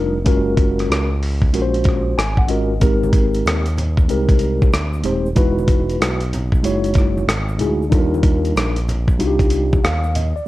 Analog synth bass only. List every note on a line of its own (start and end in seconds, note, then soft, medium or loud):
0.00 0.25 F1 medium
0.26 0.87 F#1 medium
0.90 1.50 C#2 loud
1.54 2.14 A#1 medium
2.17 2.78 G#1 medium
2.82 3.42 G#1 loud
3.45 4.06 D#2 loud
4.09 4.70 C2 medium
4.73 5.03 D2 medium
5.04 5.35 D#1 medium
5.37 5.97 E1 loud
6.00 6.61 B1 medium
6.64 7.25 F#1 medium
7.28 7.61 G#1 loud
7.60 7.90 D2 medium
7.92 8.53 D#2 loud
8.56 9.21 A#1 loud
9.20 9.80 C2 medium
9.84 10.33 D#2 medium
10.36 10.41 D#2 soft